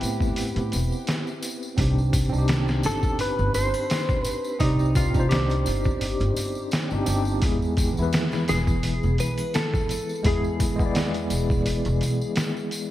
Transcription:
Already playing: B3 C4 E4 G4 B4
0.01 A2, open hi-hat, tambourine
0.20 kick, tambourine
0.36 open hi-hat, tambourine
0.56 A2, closed hi-hat, tambourine
0.72 E1, open hi-hat, tambourine
0.92 tambourine
1.07 snare, open hi-hat, tambourine
1.27 tambourine
1.43 open hi-hat, tambourine
1.63 tambourine
1.77 C2 C4 D4 D#4, kick, open hi-hat, tambourine
1.81 G4
1.98 tambourine
2.13 kick, open hi-hat, tambourine
2.29 C2 C4 D4
2.33 D#4, tambourine
2.38 G4
2.48 snare, open hi-hat, tambourine
2.68 snare, tambourine
2.83 G1 A4, snare, open hi-hat, tambourine
3.03 kick, tambourine
3.19 B4, open hi-hat, tambourine
3.39 G1, tambourine
3.54 G1 C5, open hi-hat, tambourine
3.74 closed hi-hat, tambourine, triangle
3.90 snare, open hi-hat, tambourine
4.09 kick, tambourine
4.23 B4, open hi-hat, tambourine
4.44 tambourine
4.58 C2 C4 D#4 D5, kick, open hi-hat, tambourine
4.63 G4
4.79 tambourine
4.95 F4, kick, open hi-hat, tambourine
5.10 C4 D4
5.14 C2 D#4, kick, tambourine
5.20 C5
5.29 G4, snare, open hi-hat, tambourine
5.50 closed hi-hat, tambourine
5.66 G1, open hi-hat, tambourine
5.84 kick, tambourine
6.01 open hi-hat, tambourine
6.20 G1, closed hi-hat, tambourine
6.36 G1, open hi-hat, tambourine
6.55 tambourine
6.71 snare, open hi-hat, tambourine
6.89 G1 C4 D4 D#4, tambourine
6.94 G4
7.06 G1 C4 D4 D#4, open hi-hat, tambourine
7.10 G4
7.25 tambourine
7.40 E2 G#3 B3 E4, kick, open hi-hat, tambourine
7.46 G#4
7.62 tambourine
7.77 kick, open hi-hat, tambourine
7.93 E3 B3
7.97 E2 E4, tambourine
8.02 B4
8.12 snare, open hi-hat, tambourine
8.32 snare, tambourine
8.48 E1 G#4, snare, open hi-hat, tambourine
8.67 kick, tambourine
8.83 open hi-hat, tambourine
9.03 E1, tambourine
9.18 B1 B4, open hi-hat, tambourine
9.38 closed hi-hat, tambourine, triangle
9.54 A4, snare, open hi-hat, tambourine
9.74 kick, tambourine
9.89 open hi-hat, tambourine
10.09 tambourine
10.23 E2 G#3 B3 E4 G#4, kick, open hi-hat, tambourine
10.28 G#4
10.44 tambourine
10.60 kick, open hi-hat, tambourine
10.76 E2 G#3 B3, kick
10.80 E4, tambourine
10.86 D5
10.95 snare, open hi-hat, tambourine
11.14 closed hi-hat, tambourine
11.30 E1, open hi-hat, tambourine
11.50 kick, tambourine
11.66 open hi-hat, tambourine
11.85 E1, closed hi-hat, tambourine
12.01 B1, open hi-hat, tambourine
12.21 tambourine
12.36 snare, open hi-hat, tambourine
12.57 tambourine
12.71 open hi-hat, tambourine

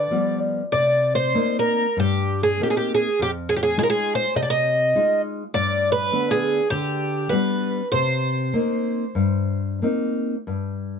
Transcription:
Already playing: D5
0.11 F3 G3 B3
0.72 C3 D5
1.15 C5
1.35 A#3 C4 D#4
1.59 A#4
1.97 G2 G4
2.43 G#4
2.60 A#3 C4 D#4 G4
2.70 G#4
2.77 G4
2.94 G#4
3.19 F2 G4
3.49 G#4
3.57 G4
3.63 G#4
3.77 G#3 D#4 F4 G#4
3.83 A#4
3.90 G#4
4.15 C5
4.36 C3 D#5
4.42 D5
4.50 D#5
4.95 G#3 D#4 F4
5.54 G2 D5
5.92 B4
6.12 D3 B3 D4
6.31 G#4
6.70 D3 G4
7.29 G3 B3 D4 B4
7.92 C3 C5
8.54 A#3 C4 D#4
9.15 G2
9.82 A#3 C4 D#4
10.47 G2

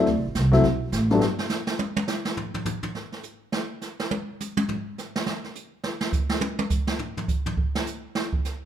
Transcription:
Already playing: D5
0.06 D2, brush sweep, kick, snare
0.16 C2
0.25 A1
0.35 C2, kick, snare, hi-hat pedal
0.52 F#3 A3 C4 E4, snare
0.63 B1, brush sweep, kick, snare
0.92 A1, kick, snare, hi-hat pedal
1.10 G2 F#3 A3 B3 D4, snare
1.21 snare
1.39 snare
1.50 snare, hi-hat pedal
1.67 snare
1.79 high tom
1.96 high tom
2.08 snare, hi-hat pedal
2.25 snare
2.37 floor tom
2.54 floor tom
2.65 floor tom, hi-hat pedal
2.83 floor tom
2.95 snare
3.12 snare
3.23 hi-hat pedal
3.52 snare
3.81 snare, hi-hat pedal
4.00 snare
4.11 high tom
4.40 hi-hat pedal, high tom
4.57 high tom
4.69 floor tom
4.98 snare, hi-hat pedal
5.16 snare
5.26 snare
5.44 snare
5.55 hi-hat pedal
5.84 snare
6.01 snare
6.12 kick, hi-hat pedal
6.29 snare
6.41 high tom
6.59 high tom
6.70 kick, hi-hat pedal
6.87 snare
6.99 floor tom
7.17 floor tom
7.28 kick, hi-hat pedal
7.46 floor tom
7.57 kick
7.75 snare
7.86 hi-hat pedal
8.15 snare
8.33 kick
8.45 snare, hi-hat pedal

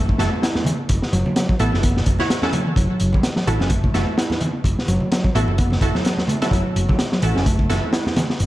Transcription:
Already playing: F#1 A3 E4 F#4 A4
0.09 kick, high conga
0.18 F#1 E4 F#4 A4, snare, closed hi-hat
0.32 low conga
0.42 E4, snare, closed hi-hat
0.55 snare, low conga
0.65 E3, closed hi-hat, high conga
0.89 F#1, kick, closed hi-hat
1.02 snare
1.12 F#1 F#3, closed hi-hat
1.26 high conga
1.36 F#3, snare, closed hi-hat
1.49 F#3, kick
1.59 A1 B3 E4 F#4 A4, closed hi-hat
1.72 F#1, snare, low conga
1.83 B3, kick, closed hi-hat
1.96 snare, high conga
2.06 F#1, kick, closed hi-hat
2.19 E4 F#4 C#5, snare, low conga
2.30 snare, closed hi-hat
2.42 C#4 E4 F#4 A4, snare, low conga
2.53 F#3, closed hi-hat, high conga
2.66 E3
2.76 F#1 F#3, kick, closed hi-hat
3.00 F#1, closed hi-hat
3.13 kick, high conga
3.23 snare, closed hi-hat
3.36 F#3, snare
3.47 A1 E3 E4 F#4 A4, closed hi-hat
3.60 F#1 C#4, snare, low conga
3.70 A3, kick, closed hi-hat
3.83 kick, high conga
3.94 F#1 E4 F#4 A4, snare, closed hi-hat
4.06 low conga
4.18 E4, snare, closed hi-hat
4.30 snare, low conga
4.40 E3, closed hi-hat, high conga
4.64 F#1, kick, closed hi-hat
4.79 snare
4.88 F#1 F#3, closed hi-hat
5.00 high conga
5.11 F#3, snare, closed hi-hat
5.24 F#3, kick
5.35 A1 B3 E4 F#4 A4, closed hi-hat
5.48 F#1, low conga
5.58 B3, kick, closed hi-hat
5.70 snare, high conga
5.81 F#1 E4 F#4 A4, kick, closed hi-hat
5.95 F#3, snare, low conga
6.05 snare, closed hi-hat
6.17 F#3, snare, low conga
6.28 A3, closed hi-hat, high conga
6.42 F#3 E4 F#4 A4, snare, closed hi-hat
6.51 F#1 F#3, kick, closed hi-hat
6.76 F#1, closed hi-hat
6.89 kick, high conga
6.99 snare, closed hi-hat
7.12 F#3, snare
7.22 A1 E3 E4 F#4 A4, closed hi-hat
7.35 F#1 C#4, snare, low conga
7.46 A3, kick, closed hi-hat
7.59 kick, high conga
7.69 F#1 E4 F#4 A4, snare, closed hi-hat
7.83 low conga
7.93 E4, snare, closed hi-hat
8.06 snare, low conga
8.16 E3, snare, closed hi-hat, high conga
8.30 snare
8.40 F#1, closed hi-hat

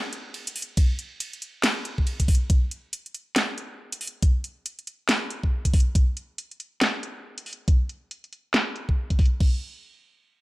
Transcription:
0.13 closed hi-hat
0.34 ride
0.47 closed hi-hat
0.56 open hi-hat
0.62 closed hi-hat
0.77 kick, closed hi-hat, ride
0.99 closed hi-hat
1.20 closed hi-hat, ride
1.33 closed hi-hat
1.42 closed hi-hat
1.64 snare, closed hi-hat, ride
1.85 closed hi-hat
1.98 kick
2.07 closed hi-hat, ride
2.20 kick, closed hi-hat
2.28 kick, open hi-hat
2.35 closed hi-hat
2.50 kick, closed hi-hat
2.71 closed hi-hat
2.93 closed hi-hat
3.06 closed hi-hat
3.14 closed hi-hat
3.36 snare, closed hi-hat
3.58 closed hi-hat
3.92 closed hi-hat
4.01 open hi-hat
4.07 closed hi-hat
4.22 kick, closed hi-hat
4.44 closed hi-hat
4.66 closed hi-hat
4.79 closed hi-hat
4.87 closed hi-hat
5.09 snare, closed hi-hat
5.30 closed hi-hat
5.43 kick
5.65 kick, closed hi-hat
5.74 kick, open hi-hat
5.80 closed hi-hat
5.95 kick, closed hi-hat
6.17 closed hi-hat
6.38 closed hi-hat
6.51 closed hi-hat
6.60 closed hi-hat
6.81 snare, closed hi-hat
7.03 closed hi-hat
7.38 closed hi-hat
7.46 open hi-hat
7.53 closed hi-hat
7.68 kick, closed hi-hat
7.89 closed hi-hat
8.11 closed hi-hat
8.24 closed hi-hat
8.33 closed hi-hat
8.54 snare, closed hi-hat
8.76 closed hi-hat
8.89 kick
9.10 kick, closed hi-hat
9.19 kick, open hi-hat
9.25 closed hi-hat
9.40 kick, crash

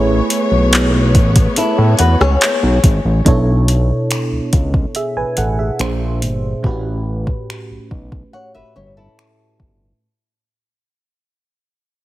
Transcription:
Already playing: A1 A3 B3 E4 G#4 B4 C#5
0.30 closed hi-hat
0.51 B1
0.73 clap, closed hi-hat
1.15 A1, kick, closed hi-hat
1.36 kick, closed hi-hat
1.56 E4 A4, closed hi-hat
1.78 A2
1.99 E2 F#4 B4 F#5, closed hi-hat
2.21 C#2 G#4 C#5, cross-stick
2.41 clap, closed hi-hat
2.63 B1
2.84 G#1, kick, closed hi-hat
3.05 A1
3.25 B1 B2 B3 D4 E4 A4 C#5, kick, closed hi-hat
3.68 closed hi-hat
4.11 finger snap, closed hi-hat
4.32 C#2
4.53 C#2, kick, closed hi-hat
4.74 kick
4.95 G#4 E5, closed hi-hat
5.16 A1 B4 G#5
5.37 A1 A4 F#5, closed hi-hat
5.59 G#4 E5
5.79 A#1 A#2 A#3 D4 G#4 C5, finger snap, closed hi-hat
6.22 G1, closed hi-hat
6.63 A1 A2 A3 C4 F#4 G4 B4, kick
6.71 C#4
7.27 kick
7.50 finger snap
7.70 B1
7.91 B1, kick
8.12 kick
8.33 C#5 F#5
8.54 G1 B4 E5
8.76 G1 G4 C#5
8.97 E4 A4
9.19 finger snap
9.60 G1, kick

